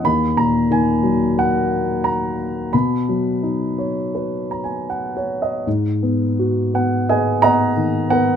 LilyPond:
<<
  \new Staff \with { instrumentName = "Grand piano" } { \time 4/4 \key b \major \tempo 4 = 87 << { b''8 ais''8 gis''4 fis''4 ais''4 | b''2. r4 | \key gis \minor r4. fis''8 <b' dis'' gis''>8 <dis'' fis'' ais''>4 <ais' b' fis''>8 | } \\ { r1 | r2 \tuplet 3/2 { r8. ais''16 gis''8 fis''8 cis''8 dis''8 } | r1 | } >> }
  \new Staff \with { instrumentName = "Grand piano" } { \time 4/4 \key b \major dis,8 ais,8 dis8 fis8 ais2 | b,8 fis8 dis'8 cis''8 b'2 | \key gis \minor gis,8 b8 fis'8 b8 gis'8 b8 dis8 b8 | }
>>